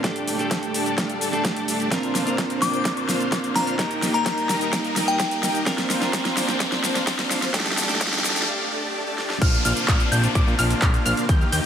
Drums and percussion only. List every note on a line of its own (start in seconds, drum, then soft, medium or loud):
0.04 kick loud
0.04 snare medium
0.04 closed hi-hat medium
0.04 shaker soft
0.16 closed hi-hat soft
0.16 shaker soft
0.27 open hi-hat loud
0.27 shaker medium
0.39 closed hi-hat soft
0.39 shaker soft
0.51 kick loud
0.51 snare medium
0.51 closed hi-hat medium
0.51 shaker soft
0.63 closed hi-hat soft
0.63 shaker soft
0.74 open hi-hat medium
0.74 shaker medium
0.86 closed hi-hat soft
0.86 shaker soft
0.98 kick loud
0.98 snare medium
0.98 closed hi-hat medium
0.98 shaker soft
1.10 closed hi-hat soft
1.10 shaker soft
1.21 open hi-hat loud
1.21 shaker medium
1.33 closed hi-hat soft
1.33 shaker soft
1.45 kick loud
1.45 snare medium
1.45 closed hi-hat medium
1.45 shaker soft
1.56 closed hi-hat soft
1.56 shaker soft
1.68 open hi-hat medium
1.68 shaker medium
1.80 closed hi-hat soft
1.80 shaker soft
1.92 kick loud
1.92 snare medium
1.92 closed hi-hat medium
1.92 shaker soft
2.03 closed hi-hat soft
2.03 shaker soft
2.15 snare medium
2.15 open hi-hat loud
2.15 shaker medium
2.27 closed hi-hat soft
2.27 shaker soft
2.38 kick loud
2.38 snare medium
2.38 closed hi-hat medium
2.38 shaker soft
2.50 closed hi-hat soft
2.50 shaker soft
2.62 snare medium
2.62 open hi-hat medium
2.62 shaker medium
2.74 closed hi-hat soft
2.74 shaker soft
2.85 kick loud
2.85 snare medium
2.85 closed hi-hat medium
2.85 shaker soft
2.97 closed hi-hat soft
2.97 shaker soft
3.09 snare medium
3.09 open hi-hat loud
3.09 shaker medium
3.20 closed hi-hat soft
3.20 shaker soft
3.32 kick loud
3.32 snare medium
3.32 closed hi-hat medium
3.32 shaker soft
3.44 closed hi-hat soft
3.44 shaker soft
3.56 snare medium
3.56 open hi-hat medium
3.56 shaker medium
3.67 closed hi-hat soft
3.67 shaker soft
3.79 kick loud
3.79 snare medium
3.79 closed hi-hat medium
3.79 shaker soft
3.91 closed hi-hat soft
3.91 shaker soft
4.02 snare medium
4.02 open hi-hat loud
4.02 shaker medium
4.14 closed hi-hat soft
4.14 shaker soft
4.26 kick loud
4.26 snare medium
4.26 closed hi-hat medium
4.26 shaker soft
4.38 closed hi-hat soft
4.38 shaker soft
4.49 snare medium
4.49 open hi-hat medium
4.49 shaker medium
4.61 closed hi-hat soft
4.61 shaker soft
4.73 kick loud
4.73 snare medium
4.73 closed hi-hat medium
4.73 shaker soft
4.84 closed hi-hat soft
4.84 shaker soft
4.96 snare medium
4.96 open hi-hat loud
4.96 shaker medium
5.08 closed hi-hat soft
5.08 shaker soft
5.20 kick loud
5.20 snare medium
5.20 closed hi-hat medium
5.20 shaker soft
5.31 closed hi-hat soft
5.31 shaker soft
5.43 snare medium
5.43 open hi-hat medium
5.43 shaker medium
5.55 closed hi-hat soft
5.55 shaker soft
5.66 kick loud
5.66 snare medium
5.66 closed hi-hat loud
5.66 shaker soft
5.78 snare medium
5.78 closed hi-hat soft
5.78 shaker soft
5.90 snare medium
5.90 open hi-hat loud
5.90 shaker medium
6.02 snare medium
6.02 closed hi-hat soft
6.02 shaker soft
6.13 kick loud
6.13 snare medium
6.13 closed hi-hat medium
6.13 shaker soft
6.25 snare medium
6.25 closed hi-hat soft
6.25 shaker soft
6.37 snare medium
6.37 open hi-hat medium
6.37 shaker medium
6.49 snare medium
6.49 closed hi-hat soft
6.49 shaker soft
6.60 kick loud
6.60 snare loud
6.60 closed hi-hat loud
6.60 shaker soft
6.72 snare medium
6.72 closed hi-hat soft
6.72 shaker soft
6.84 snare loud
6.84 open hi-hat loud
6.84 shaker medium
6.95 snare medium
6.95 closed hi-hat soft
6.95 shaker soft
7.07 kick loud
7.07 snare loud
7.07 closed hi-hat medium
7.07 shaker soft
7.19 snare medium
7.19 closed hi-hat soft
7.19 shaker soft
7.31 snare loud
7.31 open hi-hat medium
7.31 shaker medium
7.42 snare medium
7.42 closed hi-hat soft
7.42 shaker soft
7.54 kick loud
7.54 snare loud
7.54 closed hi-hat loud
7.54 shaker soft
7.60 snare medium
7.66 snare medium
7.66 closed hi-hat soft
7.66 shaker soft
7.72 snare medium
7.77 snare loud
7.77 open hi-hat loud
7.77 shaker medium
7.83 snare medium
7.89 snare medium
7.89 closed hi-hat soft
7.89 shaker soft
7.95 snare medium
8.01 kick loud
8.01 snare loud
8.01 closed hi-hat loud
8.01 shaker soft
8.07 snare medium
8.13 snare medium
8.13 closed hi-hat soft
8.13 shaker soft
8.19 snare medium
8.24 snare loud
8.24 open hi-hat medium
8.24 shaker medium
8.30 snare medium
8.36 snare medium
8.36 closed hi-hat soft
8.36 shaker soft
8.42 snare loud
9.18 snare medium
9.30 snare medium
9.42 kick loud
9.42 closed hi-hat medium
9.42 crash loud
9.42 shaker soft
9.54 shaker soft
9.65 open hi-hat loud
9.65 shaker medium
9.77 closed hi-hat medium
9.77 shaker soft
9.88 kick loud
9.88 clap loud
9.88 closed hi-hat medium
9.88 shaker soft
10.00 closed hi-hat soft
10.00 shaker soft
10.12 open hi-hat medium
10.12 shaker medium
10.24 closed hi-hat medium
10.24 shaker soft
10.35 kick loud
10.35 closed hi-hat medium
10.35 shaker soft
10.48 shaker soft
10.59 open hi-hat loud
10.59 shaker medium
10.70 closed hi-hat medium
10.70 shaker soft
10.82 kick loud
10.82 clap loud
10.82 closed hi-hat medium
10.82 shaker soft
10.94 closed hi-hat soft
10.94 shaker soft
11.06 open hi-hat medium
11.06 shaker medium
11.17 closed hi-hat medium
11.17 shaker soft
11.29 kick loud
11.29 closed hi-hat medium
11.29 shaker soft
11.41 shaker soft
11.52 open hi-hat loud
11.52 shaker medium